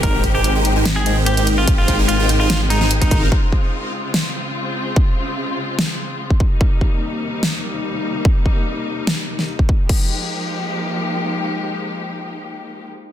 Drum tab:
CC |----------------|----------------|----------------|----------------|
HH |x-x-x-x-x-x-xxx-|x-x-x-x-x-x-xxx-|----------------|----------------|
SD |--------o-------|--------o--o----|--------o-------|--------o-------|
BD |o-o-------------|o-o----------oo-|o-o-------------|o------------oo-|

CC |----------------|----------------|x---------------|----------------|
HH |----------------|----------------|----------------|----------------|
SD |--------o-------|--------o--o----|----------------|----------------|
BD |o-o-------------|o-o----------oo-|o---------------|----------------|